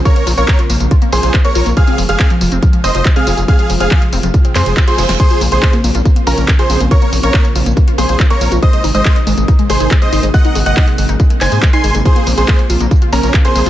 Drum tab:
CC |----------------|----------------|----------------|x---------------|
HH |xxoxxxoxxxoxxxox|xxoxxxoxxxoxxxox|xxoxxxoxxxoxxxox|xxoxxxoxxxoxxxox|
TB |x-xxx-xxx-xxx-xx|x-xxx-xxx-xxx-xx|x-xxx-xxx-xxx-xx|x-xxx-xxx-xxx-xx|
CP |----x-------x---|----x-------x---|----x-----x-x---|----x-------x---|
SD |----------------|----------------|--------------oo|----------------|
BD |o---o---o---o---|o---o---o---o---|o---o---o---o---|o---o---o---o---|

CC |----------------|----------------|----------------|----------------|
HH |xxoxxxoxxxoxxxox|xxoxxxoxxxoxxxox|xxoxxxoxxxoxxxox|xxoxxxoxxxoxxxox|
TB |x-xxx-xxx-xxx-xx|x-xxx-xxx-xxx-xx|x-xxx-xxx-xxx-xx|x-xxx-xxx-xxx-xx|
CP |----x-------x---|----x-------x---|----x-----x-x---|----x-------x---|
SD |----------------|----------------|----------------|----------------|
BD |o---o---o---o---|o---o---o---o---|o---o---o---o---|o---o---o---o---|